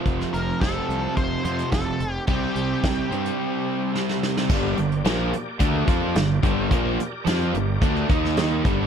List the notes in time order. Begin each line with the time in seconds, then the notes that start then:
Already playing: F2 C3 F3 A3 C4 F4 C5
0.06 F1, kick, closed hi-hat
0.21 snare
0.33 F1 A#4, closed hi-hat
0.61 F1 F2 C3 A4, kick, snare, closed hi-hat
0.65 F3
0.89 C2, closed hi-hat
1.17 F1 C5, kick, closed hi-hat
1.45 F2 C3 F3 C5, closed hi-hat
1.59 closed hi-hat
1.72 F1 A4, kick, snare, closed hi-hat
2.00 F1, closed hi-hat
2.13 G4
2.27 C2 C3 G3 G#3 C4 F4 G4 C#5, kick, closed hi-hat
2.47 G3 E4 C5
2.55 C2, closed hi-hat
2.83 C2, kick, snare, closed hi-hat
3.10 G2 C3 G3 C4, closed hi-hat
3.25 closed hi-hat
3.93 C3 G3 C4, snare
4.09 snare
4.23 snare
4.37 snare
4.49 G1 G2 D3 G3 A#3 G4 D5, kick, crash
4.78 G1 G2 D3, closed hi-hat
4.92 closed hi-hat
5.05 A#1 A#2 F3 A#3, snare, closed hi-hat
5.33 muted overdriven electric guitar stroke, muted fingered electric bass stroke, closed hi-hat
5.60 D2 D3 A3 D4, kick, closed hi-hat
5.86 F2 F3 C4 F4, kick, closed hi-hat
6.15 G1 G2 D3, snare, closed hi-hat
6.43 G1 G2 D3 G3, kick, closed hi-hat
6.70 A#1 A#2 F3 A#3 G4 A#4 D5, kick, closed hi-hat
6.99 muted fingered electric bass stroke, muted overdriven electric guitar stroke, closed hi-hat
7.25 F2 F3 C4 F4, snare, closed hi-hat
7.41 closed hi-hat
7.53 G1 G2 D3, closed hi-hat
7.81 D2 D3 A3 D4, kick, closed hi-hat
7.96 closed hi-hat
8.09 D#2 D#3 A#3 D#4 D#5, kick, closed hi-hat
8.25 snare
8.37 snare, closed hi-hat
8.64 G1 G2 D3 G3 A#3 G4 D5, kick, closed hi-hat